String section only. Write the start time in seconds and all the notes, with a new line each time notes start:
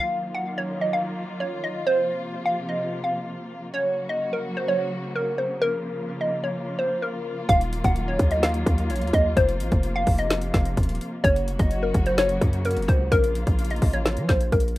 0.00 D#3 F#3 A#3 F4
1.87 C3 F3 A#3
3.74 C#3 F#3 F#4
5.62 F3 F4
7.49 D#3 F#3
9.37 C3 F3
11.24 C#3 F#3 F#4
13.12 F3 A#3 F4